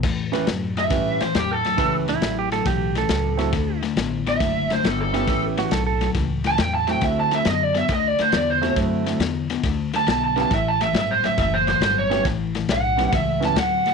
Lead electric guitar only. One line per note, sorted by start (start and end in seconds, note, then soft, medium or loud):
0.78 1.20 E5 medium
1.22 1.35 C5 medium
1.37 1.51 G4 medium
1.51 1.93 A4 medium
4.29 4.69 E5 medium
4.73 4.87 C5 medium
4.87 5.00 A4 medium
5.01 5.42 A4 medium
6.47 6.60 A5 medium
6.61 6.74 G5 medium
6.75 6.88 A5 medium
6.91 7.03 G5 medium
7.03 7.17 E5 medium
7.20 7.32 A5 medium
7.35 7.47 E5 medium
7.49 7.63 D#5 medium
7.63 7.77 D5 medium
7.77 7.90 E5 medium
7.93 8.07 D#5 medium
8.07 8.20 D5 medium
8.22 8.34 C5 medium
8.36 8.49 D5 medium
8.50 8.72 C5 medium
9.96 10.09 A5 medium
10.11 10.23 A5 medium
10.24 10.37 A5 medium
10.40 10.52 A5 medium
10.54 10.67 E5 medium
10.68 10.81 A5 medium
10.82 10.95 E5 medium
10.98 11.10 E5 medium
11.11 11.24 C5 medium
11.25 11.39 E5 medium
11.40 11.53 E5 medium
11.54 11.67 C5 medium
11.69 11.82 C5 medium
11.83 11.97 C5 medium
11.98 12.21 C#5 loud
12.72 13.13 F#5 loud
13.15 13.42 E5 medium
13.45 13.57 A5 medium
13.59 13.94 F#5 medium